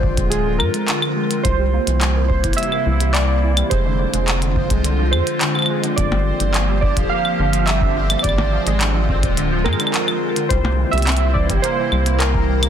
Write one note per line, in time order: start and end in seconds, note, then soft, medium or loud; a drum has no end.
0.00 0.19 G#1 medium
0.00 1.43 D3 medium
0.00 0.11 F3 medium
0.00 1.43 G#3 medium
0.00 12.69 C4 medium
0.00 1.43 F4 medium
0.00 0.27 C5 loud
0.00 12.69 C5 medium
0.00 kick loud
0.17 0.61 D1 loud
0.17 0.25 G#3 medium
0.17 kick loud
0.17 closed hi-hat medium
0.30 0.60 G#4 loud
0.30 closed hi-hat medium
0.46 0.58 D3 medium
0.58 0.69 G#2 medium
0.58 0.73 F3 medium
0.58 1.47 A#4 loud
0.58 claves medium
0.74 0.81 G#3 medium
0.74 closed hi-hat medium
0.88 1.02 D3 medium
0.88 clap loud
0.88 closed hi-hat medium
1.02 1.16 F3 medium
1.02 claves medium
1.16 1.24 G#3 medium
1.31 closed hi-hat medium
1.43 1.79 C2 medium
1.43 3.69 C3 medium
1.43 1.57 E3 loud
1.43 3.69 A#3 medium
1.43 3.69 E4 medium
1.43 2.27 C5 loud
1.43 kick loud
1.43 closed hi-hat medium
1.59 1.66 G3 loud
1.73 1.86 A#3 loud
1.87 2.45 C2 medium
1.87 2.00 E3 loud
1.87 closed hi-hat medium
2.01 2.09 G3 medium
2.01 clap loud
2.01 closed hi-hat medium
2.16 2.23 A#3 medium
2.28 2.58 C5 medium
2.28 kick loud
2.44 2.53 G1 loud
2.44 2.56 E3 medium
2.44 kick loud
2.44 closed hi-hat medium
2.53 3.16 E5 loud
2.53 closed hi-hat soft
2.58 2.71 G3 medium
2.58 closed hi-hat medium
2.63 closed hi-hat soft
2.72 2.80 A#3 medium
2.72 claves soft
2.86 3.63 C2 medium
2.86 3.00 E3 medium
3.00 3.14 G3 medium
3.00 closed hi-hat medium
3.13 3.22 A#3 medium
3.13 3.67 D5 loud
3.13 clap loud
3.13 closed hi-hat medium
3.43 3.55 E3 loud
3.57 3.64 G3 loud
3.57 closed hi-hat medium
3.57 claves medium
3.70 4.05 F1 loud
3.70 5.95 D3 medium
3.70 5.95 G#3 medium
3.70 3.84 G#3 loud
3.70 5.95 F4 medium
3.70 4.80 C5 medium
3.70 kick loud
3.70 closed hi-hat medium
3.85 3.98 D3 loud
3.99 4.07 F3 medium
4.14 4.72 F1 medium
4.14 4.21 G#3 medium
4.14 closed hi-hat medium
4.28 clap loud
4.28 closed hi-hat medium
4.42 4.54 D3 medium
4.42 closed hi-hat soft
4.56 4.70 F3 medium
4.56 kick loud
4.70 5.14 C2 loud
4.70 4.78 G#3 medium
4.70 kick loud
4.70 closed hi-hat soft
4.84 4.98 D3 medium
4.84 closed hi-hat medium
4.99 5.12 F3 medium
5.11 5.22 F2 medium
5.11 5.20 G#3 medium
5.11 5.93 C5 medium
5.11 claves medium
5.27 closed hi-hat medium
5.41 5.53 D3 loud
5.41 clap loud
5.41 closed hi-hat medium
5.55 5.63 F3 loud
5.55 claves soft
5.59 claves soft
5.62 claves medium
5.66 5.82 G#3 loud
5.66 claves medium
5.83 5.96 D3 loud
5.83 closed hi-hat medium
5.96 6.32 G1 loud
5.96 6.05 F3 medium
5.96 8.22 F3 medium
5.96 8.22 A#3 medium
5.96 8.22 G4 medium
5.96 6.78 D5 loud
5.96 kick loud
5.96 closed hi-hat medium
6.12 6.19 G3 medium
6.12 percussion blips medium
6.40 6.98 G1 medium
6.40 6.53 D3 medium
6.40 closed hi-hat medium
6.54 6.68 F3 medium
6.54 clap loud
6.54 closed hi-hat medium
6.68 6.76 G3 medium
6.81 6.96 D3 medium
6.81 6.94 D5 medium
6.81 kick loud
6.97 7.06 D1 loud
6.97 7.10 F3 medium
6.97 kick loud
6.97 closed hi-hat soft
7.09 7.23 A#3 medium
7.09 7.58 F5 loud
7.25 claves soft
7.39 8.16 G1 medium
7.39 7.52 D3 loud
7.53 7.61 F3 loud
7.53 closed hi-hat soft
7.59 7.67 F5 medium
7.66 7.80 G3 loud
7.66 8.19 E5 loud
7.66 clap loud
7.66 closed hi-hat medium
7.82 7.94 D3 loud
7.82 kick loud
7.96 8.03 F3 medium
8.10 8.17 G3 medium
8.10 closed hi-hat medium
8.10 claves medium
8.19 9.33 D5 medium
8.19 claves medium
8.24 8.58 G#1 loud
8.24 10.48 D3 medium
8.24 10.48 G#3 medium
8.24 10.48 F4 medium
8.24 kick loud
8.24 closed hi-hat medium
8.29 claves medium
8.38 8.51 D3 medium
8.38 percussion blips loud
8.52 8.66 F3 medium
8.66 9.25 G#1 medium
8.66 8.74 G#3 medium
8.66 closed hi-hat soft
8.81 8.94 D3 medium
8.81 clap loud
8.81 closed hi-hat medium
8.95 9.08 F3 medium
9.09 9.21 C4 medium
9.09 kick loud
9.23 9.67 D1 loud
9.23 kick loud
9.23 closed hi-hat soft
9.37 9.50 D3 loud
9.37 closed hi-hat medium
9.52 9.59 F3 loud
9.64 9.75 G#2 medium
9.64 9.78 G#3 loud
9.64 10.46 A#4 loud
9.64 percussion blips loud
9.64 claves soft
9.73 claves soft
9.80 9.92 D3 loud
9.80 closed hi-hat soft
9.80 claves medium
9.87 claves medium
9.94 10.01 F3 medium
9.94 clap loud
9.94 closed hi-hat medium
10.08 10.15 G#3 medium
10.08 claves medium
10.36 10.49 D3 medium
10.36 closed hi-hat medium
10.49 10.85 C2 loud
10.49 12.69 C3 medium
10.49 10.64 G3 medium
10.49 12.69 A#3 medium
10.49 12.69 E4 medium
10.49 10.93 C5 loud
10.49 kick loud
10.49 closed hi-hat medium
10.65 10.72 A#3 medium
10.65 percussion blips loud
10.79 10.92 E3 medium
10.91 11.51 C2 medium
10.91 11.06 G3 medium
10.91 11.36 E5 loud
10.91 closed hi-hat soft
10.98 closed hi-hat soft
11.02 closed hi-hat soft
11.07 11.19 C4 medium
11.07 clap loud
11.07 closed hi-hat medium
11.12 closed hi-hat soft
11.17 closed hi-hat soft
11.34 11.48 E3 loud
11.34 11.47 D5 loud
11.34 kick loud
11.49 11.58 G1 loud
11.49 11.57 G3 loud
11.49 kick loud
11.49 closed hi-hat soft
11.62 11.76 A#3 loud
11.62 12.21 C5 loud
11.62 closed hi-hat medium
11.78 11.90 E3 loud
11.92 12.69 C2 medium
11.92 11.99 G3 medium
11.92 claves soft
12.06 12.14 A#3 medium
12.06 closed hi-hat soft
12.19 12.69 A#4 loud
12.19 clap loud
12.19 closed hi-hat medium
12.34 12.47 E3 medium
12.34 kick loud
12.49 12.62 G3 medium
12.63 12.69 A#3 medium
12.63 closed hi-hat medium
12.63 claves medium